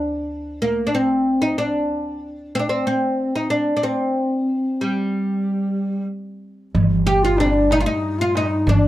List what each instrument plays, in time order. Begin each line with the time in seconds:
Already playing: upright bass D2, oud D4
0.62 oud A#3
0.87 oud D4
0.92 upright bass G1, oud C4
1.42 oud D#4
1.58 oud D4
1.89 upright bass D2
2.55 oud C4
2.59 oud D4
2.69 oud C4
2.86 upright bass G1, oud C4
3.36 oud D#4
3.50 oud D4
3.77 oud D4
3.83 upright bass D2, oud C4
4.80 upright bass G1, oud G3
6.75 upright bass G1, double bass G2, darbuka dum
7.07 oud G4, ney G4, darbuka ka
7.23 ney F4, oud F4
7.37 ney D4, oud D4, darbuka tek
7.45 ney C4
7.53 ney D4
7.71 ney D#4, oud D#4, darbuka tek
7.80 ney D#4, oud F4
7.86 oud D#4
8.19 ney F4, oud F4
8.35 ney D#4, oud D#4, darbuka tek
8.67 upright bass G1, ney D4, oud D4, darbuka dum